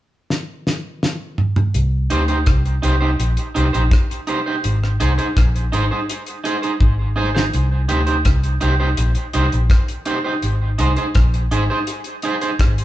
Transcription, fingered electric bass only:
1.75 2.07 C2 loud
2.12 2.44 D2 medium
2.47 2.80 C2 medium
2.84 3.16 C2 medium
3.20 3.36 A#1 medium
3.57 3.73 C2 medium
3.75 3.90 A#1 medium
4.65 4.97 G#1 loud
5.01 5.17 C2 medium
5.37 5.69 A#1 medium
5.73 5.89 G#1 medium
6.81 7.49 G#1 loud
7.54 7.86 C2 loud
7.91 8.23 D2 medium
8.26 8.58 C2 medium
8.62 8.95 C2 medium
8.98 9.14 A#1 medium
9.35 9.51 C2 medium
9.53 9.69 A#1 medium
10.43 10.75 G#1 loud
10.80 10.96 C2 medium
11.16 11.48 A#1 medium
11.52 11.68 G#1 medium
12.60 12.85 G#1 medium

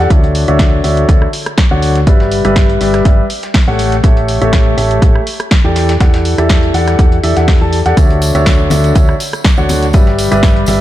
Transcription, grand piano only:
0.10 0.45 D3 medium
0.10 0.45 F#4 medium
0.10 0.45 C#5 medium
0.10 0.45 D5 medium
0.10 0.45 E5 medium
0.48 0.81 D3 medium
0.48 0.81 F#4 medium
0.48 0.81 C#5 medium
0.48 0.81 D5 medium
0.48 0.81 E5 loud
0.84 1.06 D3 medium
0.84 1.06 F#4 medium
0.84 1.06 C#5 medium
0.84 1.06 D5 medium
0.84 1.06 E5 medium
1.09 1.26 D3 medium
1.09 1.26 F#4 medium
1.09 1.26 C#5 medium
1.71 1.98 D3 medium
1.71 1.98 F#4 medium
1.71 1.98 C#5 medium
1.71 1.98 D5 medium
1.71 1.98 F#5 medium
2.07 2.42 G3 medium
2.07 2.42 G4 medium
2.07 2.42 B4 medium
2.07 2.42 D5 medium
2.07 2.42 E5 medium
2.45 2.78 G3 medium
2.45 2.78 G4 medium
2.45 2.78 B4 medium
2.45 2.78 D5 medium
2.45 2.78 E5 loud
2.81 3.03 G3 medium
2.81 3.03 G4 medium
2.81 3.03 B4 medium
2.81 3.03 D5 medium
2.81 3.03 E5 medium
3.68 3.94 A3 medium
3.68 3.94 G4 medium
3.68 3.94 A4 medium
3.68 3.94 C#5 medium
3.68 3.94 F#5 loud
4.04 4.38 A3 medium
4.04 4.38 G4 medium
4.04 4.38 A4 medium
4.04 4.38 C#5 medium
4.04 4.38 E5 medium
4.41 4.75 A3 loud
4.41 4.75 G4 medium
4.41 4.75 A4 medium
4.41 4.75 C#5 medium
4.41 4.75 E5 loud
4.77 4.99 A3 medium
4.77 4.99 G4 medium
4.77 4.99 A4 medium
4.77 4.99 C#5 medium
4.77 4.99 E5 medium
5.02 5.19 G4 medium
5.02 5.19 E5 medium
5.64 5.91 E3 medium
5.64 5.91 G4 medium
5.64 5.91 A4 medium
5.64 5.91 D5 medium
5.64 5.91 G5 medium
6.00 6.35 E3 medium
6.00 6.35 G4 medium
6.00 6.35 A4 medium
6.00 6.35 D5 medium
6.00 6.35 F#5 medium
6.38 6.72 E3 medium
6.38 6.72 G4 medium
6.38 6.72 A4 medium
6.38 6.72 D5 medium
6.38 6.72 E5 loud
6.74 6.96 E3 medium
6.74 6.96 G4 medium
6.74 6.96 A4 medium
6.74 6.96 D5 medium
6.74 6.96 F#5 medium
6.99 7.16 E3 medium
6.99 7.16 G4 medium
6.99 7.16 A4 medium
6.99 7.16 D5 medium
6.99 7.16 F#5 medium
7.23 7.33 E3 medium
7.23 7.33 G4 medium
7.23 7.33 A4 medium
7.23 7.33 D5 medium
7.23 7.33 E5 medium
7.37 7.57 E3 medium
7.37 7.57 G4 medium
7.37 7.57 A4 medium
7.37 7.57 D5 medium
7.37 7.57 F#5 medium
7.61 7.77 E3 medium
7.61 7.77 G4 medium
7.61 7.77 A4 medium
7.61 7.77 D5 medium
7.61 7.77 A5 medium
7.86 7.94 G4 medium
7.86 7.94 A4 medium
7.86 7.94 D5 medium
7.86 7.94 F#5 loud
7.97 8.32 D3 medium
7.97 8.32 F#4 medium
7.97 8.32 E5 medium
8.35 8.68 D3 loud
8.35 8.68 F#4 medium
8.35 8.68 C#5 medium
8.35 8.68 D5 medium
8.35 8.68 E5 loud
8.71 8.93 D3 medium
8.71 8.93 F#4 medium
8.71 8.93 C#5 medium
8.71 8.93 D5 medium
8.71 8.93 E5 medium
8.95 9.13 D3 medium
8.95 9.13 F#4 medium
8.95 9.13 C#5 medium
8.95 9.13 D5 medium
8.95 9.13 E5 medium
9.58 9.84 D3 medium
9.58 9.84 F#4 medium
9.58 9.84 C#5 medium
9.58 9.84 D5 medium
9.58 9.84 F#5 loud
9.94 10.28 G3 medium
9.94 10.28 G4 medium
9.94 10.28 B4 medium
9.94 10.28 D5 medium
9.94 10.28 E5 medium
10.31 10.65 G3 medium
10.31 10.65 G4 medium
10.31 10.65 B4 medium
10.31 10.65 D5 medium
10.31 10.65 E5 loud
10.68 10.81 G3 medium
10.68 10.81 G4 medium
10.68 10.81 B4 medium
10.68 10.81 D5 medium
10.68 10.81 E5 medium

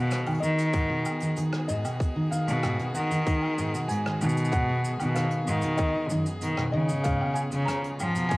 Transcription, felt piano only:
0.00 0.37 F5 loud
0.40 1.32 D#5 medium
1.68 2.27 D#5 medium
2.31 2.91 F5 medium
2.94 3.92 F#5 medium
3.88 4.54 G#5 loud
4.52 5.17 F#5 loud
5.15 5.74 F5 medium
5.77 6.69 D#5 loud
6.72 7.05 D#5 medium
7.03 7.37 F5 loud
7.34 7.41 G#5 medium
7.65 8.26 A#5 loud
8.29 8.37 G#5 loud

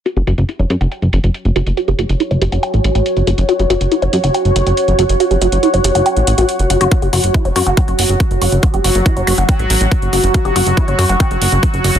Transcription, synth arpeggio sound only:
0.06 0.10 F#4 medium
0.17 0.23 G4 medium
0.27 0.34 F#4 medium
0.49 0.55 E4 medium
0.59 0.66 C#5 medium
0.70 0.79 G4 medium
0.81 0.85 F#5 medium
0.92 0.95 G5 medium
1.56 1.62 F#4 medium
1.77 1.81 F#4 medium
1.88 1.94 G4 medium
1.99 2.05 F#4 medium
2.20 2.26 E4 medium
2.31 2.37 C#5 medium
2.42 2.51 G4 medium
2.52 2.56 F#5 medium
2.63 2.67 G5 medium
3.27 3.34 F#4 medium
3.49 3.52 F#4 medium
3.59 3.66 G4 medium
3.70 3.76 F#4 medium
3.92 3.98 E4 medium
4.02 4.08 C#5 medium
4.13 4.22 G4 medium
4.24 4.27 F#5 medium
4.34 4.38 G5 medium
4.99 5.05 F#4 medium
5.20 5.24 F#4 medium
5.31 5.37 G4 medium
5.41 5.48 F#4 medium
5.63 5.69 E4 medium
5.74 5.80 C#5 medium
5.84 5.94 G4 medium
5.95 5.99 F#5 medium
6.06 6.10 G5 medium
6.38 6.44 F#4 medium
6.70 6.74 F#4 medium
6.81 6.87 F#4 loud
6.92 6.95 F#4 medium
7.02 7.09 G4 medium
7.13 7.19 F#4 medium
7.34 7.41 E4 medium
7.45 7.51 C#5 medium
7.56 7.62 F#4 loud
7.67 7.70 F#5 medium
7.77 7.81 G5 medium
8.42 8.48 F#4 medium
8.63 8.67 F#4 medium
8.74 8.80 G4 medium
8.84 8.91 F#4 medium
9.06 9.12 E4 medium
9.16 9.23 C#5 medium
9.27 9.33 F#4 medium
9.38 9.42 F#5 medium
9.49 9.52 G5 medium
10.13 10.19 F#4 medium
10.34 10.38 F#4 medium
10.45 10.51 G4 medium
10.56 10.62 F#4 medium
10.77 10.84 E4 medium
10.88 10.94 C#5 medium
10.99 11.05 F#4 loud
11.09 11.13 F#5 medium
11.20 11.24 G5 medium
11.84 11.91 F#4 medium

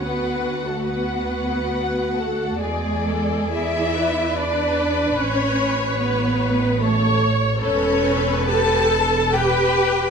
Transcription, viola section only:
0.03 2.56 F#4 soft
2.60 3.06 G#4 soft
3.06 3.53 A4 soft
3.53 3.95 G#4 soft
3.96 6.81 B4 medium
6.80 7.60 C#5 medium
7.60 8.46 A4 medium
8.48 8.90 G4 medium
8.90 9.33 A4 medium
9.33 10.10 B4 medium

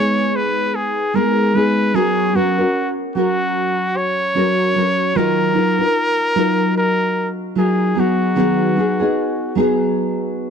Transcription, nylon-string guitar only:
0.00 1.12 G#3 medium
0.00 1.13 B3 medium
0.00 1.14 D#4 medium
0.00 1.14 G#4 medium
1.14 1.53 G#3 medium
1.14 1.54 B3 medium
1.14 1.54 D#4 medium
1.14 1.55 G#4 medium
1.54 1.93 G#3 soft
1.54 1.94 B3 medium
1.54 1.95 D#4 medium
1.54 1.95 G#4 medium
1.94 2.33 F#3 medium
1.94 2.34 C#4 medium
1.94 2.34 F#4 medium
1.94 2.35 A#4 medium
2.34 2.59 F#3 soft
2.34 2.59 C#4 soft
2.34 2.58 F#4 medium
2.34 2.57 A#4 medium
2.58 3.15 C#4 soft
2.58 3.15 F#4 soft
2.58 3.15 A#4 soft
3.15 4.34 F#3 medium
3.15 4.34 C#4 medium
3.15 4.36 F#4 medium
3.15 4.37 A#4 medium
4.35 4.74 F#3 medium
4.35 4.75 C#4 medium
4.35 4.76 F#4 medium
4.35 4.76 A#4 medium
4.75 5.14 F#3 soft
4.75 5.15 C#4 medium
4.75 5.16 F#4 medium
4.75 5.15 A#4 soft
5.15 5.56 D#3 medium
5.15 5.53 F#3 medium
5.15 5.54 D#4 medium
5.15 5.55 F4 medium
5.15 5.55 A#4 medium
5.54 5.79 F#3 soft
5.54 5.79 D#4 soft
5.54 5.79 F4 medium
5.54 5.77 A#4 medium
5.78 6.34 D#4 soft
5.78 6.35 F4 soft
5.78 6.35 A#4 soft
6.35 7.55 F#3 medium
6.35 7.56 D#4 medium
6.35 7.56 F4 medium
6.35 7.56 A#4 medium
7.55 7.94 F#3 medium
7.55 7.95 D#4 medium
7.55 7.96 F4 medium
7.55 7.97 A#4 medium
7.95 8.35 F#3 soft
7.95 8.35 B3 medium
7.95 8.36 D#4 medium
7.95 8.36 G#4 medium
8.35 8.76 D#3 medium
8.35 8.74 F#3 medium
8.35 8.75 B3 medium
8.35 8.76 D#4 medium
8.35 8.77 G#4 medium
8.75 9.00 F#3 soft
8.75 9.00 B3 medium
8.75 9.00 D#4 soft
8.75 8.98 G#4 medium
9.00 9.55 B3 soft
9.00 9.56 D#4 soft
9.00 9.56 G#4 medium
9.55 10.50 F#3 medium
9.55 10.50 B3 medium
9.55 10.50 D#4 medium
9.55 10.50 G#4 medium

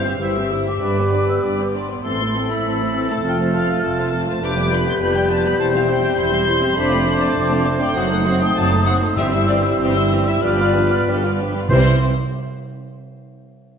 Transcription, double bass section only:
0.00 0.13 G1 medium
0.20 0.74 G1 medium
0.82 1.36 G1 medium
1.44 1.98 G1 medium
2.05 2.58 A1 medium
2.65 3.17 A1 medium
3.24 3.76 F1 medium
3.84 4.36 F1 medium
4.42 4.94 F1 medium
5.01 5.52 F1 medium
5.59 6.10 E1 medium
6.18 6.69 E1 medium
6.77 7.29 F1 medium
7.36 7.88 F1 medium
7.96 8.49 F#1 medium
8.56 9.10 F#1 medium
9.17 9.72 G1 medium
9.79 10.34 G1 medium
10.42 10.98 G1 medium
11.06 11.63 G1 medium
11.70 12.06 C2 medium

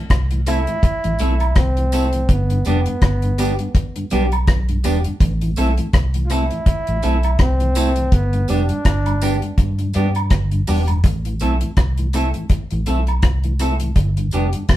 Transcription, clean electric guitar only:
0.47 0.60 A3 medium
0.47 0.60 C4 medium
0.47 0.60 E4 medium
0.47 0.60 A4 medium
1.20 1.33 A3 medium
1.20 1.33 C4 medium
1.20 1.33 E4 medium
1.20 1.33 A4 medium
1.93 2.06 A3 medium
1.93 2.06 C4 medium
1.93 2.06 E4 medium
1.93 2.06 A4 medium
2.66 2.79 G3 medium
2.66 2.79 B3 medium
2.66 2.79 D4 medium
2.66 2.79 G4 medium
3.38 3.52 G3 medium
3.38 3.52 B3 medium
3.38 3.52 D4 medium
3.38 3.52 G4 loud
4.11 4.24 G3 medium
4.11 4.25 B3 medium
4.11 4.25 D4 medium
4.11 4.25 G4 medium
4.84 4.97 G3 medium
4.84 4.98 B3 medium
4.84 4.98 D4 medium
4.84 4.98 G4 medium
5.57 5.70 A3 medium
5.57 5.70 C4 medium
5.57 5.71 E4 loud
5.57 5.71 A4 loud
6.30 6.43 A3 medium
6.30 6.44 C4 medium
6.30 6.44 E4 medium
6.30 6.44 A4 loud
7.03 7.16 A3 medium
7.03 7.16 C4 medium
7.03 7.16 E4 medium
7.03 7.17 A4 medium
7.76 7.89 A3 medium
7.76 7.89 C4 medium
7.76 7.89 E4 medium
7.76 7.89 A4 medium
8.48 8.62 G3 medium
8.48 8.62 B3 medium
8.48 8.62 D4 medium
8.48 8.62 G4 medium
9.22 9.35 G3 medium
9.22 9.35 B3 medium
9.22 9.35 D4 medium
9.22 9.36 G4 medium
9.95 10.08 G3 medium
9.95 10.08 B3 medium
9.95 10.08 D4 medium
9.95 10.09 G4 medium
10.68 10.81 G3 medium
10.68 10.81 B3 medium
10.68 10.81 D4 medium
10.68 10.81 G4 medium
11.41 11.54 A3 medium
11.41 11.54 C4 medium
11.41 11.54 E4 medium
11.41 11.55 A4 medium
12.14 12.27 A3 medium
12.14 12.27 C4 medium
12.14 12.28 E4 medium
12.14 12.28 A4 medium
12.87 13.00 A3 medium
12.87 13.00 C4 medium
12.87 13.00 E4 medium
12.87 13.00 A4 medium
13.60 13.73 A3 medium
13.60 13.73 C4 medium
13.60 13.73 E4 medium
13.60 13.74 A4 medium
14.33 14.46 G3 medium
14.33 14.46 B3 medium
14.33 14.46 D4 medium
14.33 14.47 G4 medium

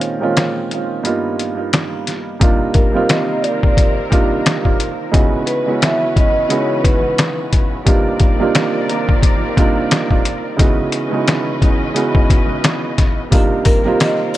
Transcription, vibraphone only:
2.74 3.05 A#4 medium
3.10 3.40 D#5 medium
3.42 3.93 D5 medium
5.46 5.78 B4 medium
5.81 6.12 E5 medium
6.16 6.47 D#5 medium
6.49 6.80 C#5 medium
6.83 7.34 B4 medium
13.65 13.96 A#4 medium
14.01 14.31 D#5 medium
14.33 14.37 D5 medium

